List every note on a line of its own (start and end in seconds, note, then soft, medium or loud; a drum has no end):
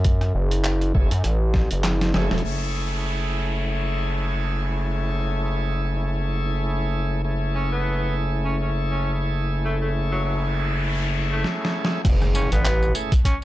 0.00 0.33 F#2 medium
0.04 kick loud
0.04 closed hi-hat medium
0.21 cross-stick soft
0.21 closed hi-hat soft
0.35 0.93 F#1 loud
0.51 closed hi-hat medium
0.64 clap loud
0.64 closed hi-hat medium
0.81 closed hi-hat soft
0.95 1.09 F#1 medium
0.95 1.14 A3 medium
0.95 1.14 C#4 medium
0.95 1.14 E4 medium
0.95 1.14 G#4 loud
0.95 kick loud
1.11 1.23 F#2 medium
1.11 closed hi-hat medium
1.24 1.69 A1 loud
1.24 cross-stick soft
1.24 closed hi-hat medium
1.54 kick medium
1.54 snare medium
1.71 2.13 F#1 loud
1.71 closed hi-hat medium
1.84 snare medium
1.84 clap loud
1.84 closed hi-hat medium
2.01 snare medium
2.01 closed hi-hat soft
2.14 2.29 F#1 loud
2.14 2.43 A3 medium
2.14 2.44 C#4 medium
2.14 2.44 E4 medium
2.14 2.44 G#4 loud
2.14 snare loud
2.31 2.43 E1 loud
2.31 snare medium
2.38 closed hi-hat medium
2.44 11.45 F#1 medium
2.44 7.22 A3 medium
2.44 7.22 C#4 medium
2.44 7.22 E4 medium
2.44 7.22 G#4 medium
2.44 downlifter medium
7.24 12.02 A3 medium
7.24 12.02 C#4 medium
7.24 12.02 E4 medium
7.24 12.02 G#4 medium
7.55 7.68 C#4 medium
7.72 8.15 B3 medium
8.45 8.56 C#4 medium
8.62 8.70 C#4 medium
8.91 9.12 C#4 medium
9.64 9.76 A3 medium
9.64 noise sweep medium
9.81 9.90 A3 medium
10.12 10.20 F#3 medium
10.25 10.36 F#3 medium
11.32 11.45 A3 medium
11.44 snare medium
11.65 snare medium
11.85 snare loud
12.05 12.49 F#1 loud
12.05 kick loud
12.05 closed hi-hat medium
12.05 tambourine soft
12.05 crash loud
12.05 impact medium
12.22 cross-stick soft
12.22 tambourine soft
12.35 12.49 C#4 medium
12.35 tambourine medium
12.52 12.93 A1 loud
12.52 12.95 B3 loud
12.52 closed hi-hat medium
12.52 tambourine soft
12.65 clap loud
12.65 closed hi-hat medium
12.65 tambourine soft
12.82 tambourine soft
12.95 13.14 A3 medium
12.95 13.14 C#4 medium
12.95 13.14 E4 medium
12.95 13.14 G#4 medium
12.95 tambourine medium
13.12 kick loud
13.12 closed hi-hat medium
13.12 tambourine soft
13.25 13.36 C#4 medium
13.25 kick medium
13.25 closed hi-hat medium
13.25 tambourine soft